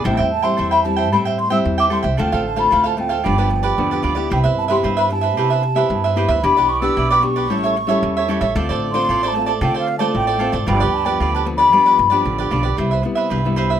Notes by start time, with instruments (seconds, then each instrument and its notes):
0.04 upright bass A1, nylon-string guitar A2 G3 C4 E4, cavaquinho A4 C5 E5 G5, flute G5
0.17 upright bass E2, cavaquinho C5 E5 G5
0.31 flute A5
0.42 nylon-string guitar G3 C4 E4, cavaquinho C5 E5 G5, flute C6
0.57 upright bass E2, nylon-string guitar E3, cavaquinho A4 C5 E5 G5
0.70 cavaquinho C5 E5 G5, flute B5
0.82 nylon-string guitar G3 C4 E4, flute A5, muted cavaquinho stroke
0.96 cavaquinho C5 E5 G5
1.12 upright bass A2, nylon-string guitar A2 G3 C4 E4, cavaquinho A4 C5 E5 G5, flute B5
1.25 cavaquinho C5 E5 G5
1.39 flute C6, muted cavaquinho stroke
1.50 nylon-string guitar G3 C4 E4, cavaquinho C5 E5 G5, flute E6
1.65 upright bass E2, nylon-string guitar E3
1.78 cavaquinho C5 E5 G5, flute D6
1.90 nylon-string guitar G3 C4 E4, cavaquinho A4 C5 E5 G5, flute C6
2.03 upright bass C2, cavaquinho C5 E5 G5
2.17 upright bass D2, nylon-string guitar D3 A3 C4 F4, cavaquinho D4 A4 C5 F5, flute G5
2.32 upright bass A1, cavaquinho A4 C5 F5
2.46 flute A5
2.56 nylon-string guitar A3 C4 F4, cavaquinho A4 C5 F5, flute B5
2.71 upright bass D2, nylon-string guitar A2, cavaquinho D4 A4 C5 F5
2.84 cavaquinho A4 C5 F5, flute A5
2.97 nylon-string guitar A3 C4 F4, flute G5, muted cavaquinho stroke
3.09 cavaquinho A4 C5 F5
3.23 upright bass G1, nylon-string guitar G2 F3 B3 D4, cavaquinho F4 G4 B4 D5
3.38 nylon-string guitar F3 B3 D4, cavaquinho G4 B4 D5
3.50 muted cavaquinho stroke
3.63 cavaquinho G4 B4 D5
3.78 upright bass E2, nylon-string guitar D3 F3 B3 D4
3.91 cavaquinho G4 B4 D5
4.03 upright bass D2, cavaquinho F4 G4 B4 D5
4.15 nylon-string guitar B3 E4 G4, cavaquinho G4 B4 D5
4.30 upright bass C2, nylon-string guitar C3, cavaquinho G4 B4 C5 E5, flute G5
4.44 upright bass G2, cavaquinho B4 C5 E5
4.58 flute A5
4.68 nylon-string guitar B3 E4 G4, cavaquinho B4 C5 E5, flute C6
4.83 upright bass G2, nylon-string guitar G2, cavaquinho G4 B4 C5 E5
4.97 cavaquinho B4 C5 E5, flute B5
5.09 nylon-string guitar B3 E4 G4, flute A5, muted cavaquinho stroke
5.21 cavaquinho B4 C5 E5
5.37 upright bass C3, nylon-string guitar C3 B3 E4 G4, cavaquinho G4 B4 C5 E5
5.50 cavaquinho B4 C5 E5
5.63 muted cavaquinho stroke
5.75 nylon-string guitar B3 E4 G4, cavaquinho B4 C5 E5
5.90 upright bass G2, nylon-string guitar G2
6.04 cavaquinho B4 C5 E5
6.16 nylon-string guitar B3 E4 G4, cavaquinho G4 B4 C5 E5
6.28 upright bass D2, cavaquinho B4 C5 E5
6.42 upright bass E2, nylon-string guitar E3 B3 D4 G4, cavaquinho E4 G4 B4 D5, flute B5
6.57 upright bass B1, cavaquinho G4 B4 D5
6.68 flute C#6
6.81 nylon-string guitar B3 D4 G4, cavaquinho G4 B4 D5, flute E6
6.96 upright bass B1, nylon-string guitar B2, cavaquinho E4 G4 B4 D5
7.09 cavaquinho G4 B4 D5, flute D6
7.21 nylon-string guitar B3 D4 G4, flute C#6, muted cavaquinho stroke
7.36 cavaquinho G4 B4 D5
7.50 upright bass A1, nylon-string guitar A2 G3 C#4 E4, cavaquinho G4 A4 C#5 E5
7.64 cavaquinho A4 C#5 E5
7.76 muted cavaquinho stroke
7.87 nylon-string guitar G3 C#4 E4, cavaquinho A4 C#5 E5
8.02 upright bass E2, nylon-string guitar E3
8.17 cavaquinho A4 C#5 E5
8.28 nylon-string guitar G3 C#4 E4, cavaquinho G4 A4 C#5 E5
8.41 upright bass A1, cavaquinho A4 C#5 E5
8.55 upright bass D2, nylon-string guitar D3 A3 C4 F4, cavaquinho F4 A4 C5 D5
8.69 upright bass A1, cavaquinho A4 C5 D5
8.92 nylon-string guitar A3 C4 F4, cavaquinho C5 D5, flute C6
8.96 cavaquinho A4
9.09 upright bass A1, nylon-string guitar A2, cavaquinho F4 A4 C5 D5
9.23 cavaquinho A4 C5 D5
9.27 flute A5
9.35 nylon-string guitar A3 C4 F4, muted cavaquinho stroke
9.45 cavaquinho A4 C5 D5, flute A5
9.61 upright bass D3, nylon-string guitar D3 A3 C4 F4, cavaquinho F4 A4 C5 D5, flute G5
9.74 cavaquinho A4 C5 D5
9.78 flute F5
9.87 muted cavaquinho stroke
9.98 nylon-string guitar A3 C4 F4, cavaquinho A4 C5 D5, flute A5
10.14 upright bass A1, nylon-string guitar A2, flute G5
10.27 cavaquinho A4 C5 D5
10.39 nylon-string guitar A3 C4 F4, cavaquinho F4 A4 C5 D5
10.52 upright bass G#1, cavaquinho A4 C5 D5
10.66 upright bass G1, nylon-string guitar G2 F3 B3 D4, cavaquinho F4 G4 B4 D5, flute G5
10.80 upright bass D2, cavaquinho G4 B4 D5
10.94 flute A5
11.05 nylon-string guitar F3 B3 D4, cavaquinho G4 B4 D5, flute G5
11.20 upright bass D2, nylon-string guitar D3, cavaquinho F4 G4 B4 D5
11.33 cavaquinho G4 B4 D5, flute A5
11.45 nylon-string guitar F3 B3 D4, muted cavaquinho stroke
11.57 cavaquinho G4 B4 D5, flute B5
11.72 nylon-string guitar G2 F3 B3 D4, upright bass G2, cavaquinho F4 G4 B4 D5
11.86 cavaquinho G4 B4 D5
11.98 upright bass G1, muted cavaquinho stroke
12.10 nylon-string guitar F3 B3 D4, cavaquinho G4 B4 D5
12.25 upright bass A1, nylon-string guitar D3
12.38 cavaquinho G4 B4 D5
12.51 upright bass B1, nylon-string guitar F3 B3 D4, cavaquinho F4 G4 B4 D5
12.63 cavaquinho G4 B4 D5
12.77 upright bass C2, nylon-string guitar C3 G3 B3 E4, cavaquinho G4 B4 C5 E5
12.91 cavaquinho B4 C5 E5
13.03 nylon-string guitar G3 B3 E4, muted cavaquinho stroke
13.15 cavaquinho B4 C5 E5
13.30 upright bass C2, nylon-string guitar G2, cavaquinho G4 B4 C5 E5
13.45 nylon-string guitar G3 B3 E4
13.56 cavaquinho G4 B4 C5 E5
13.70 cavaquinho B4 C5 E5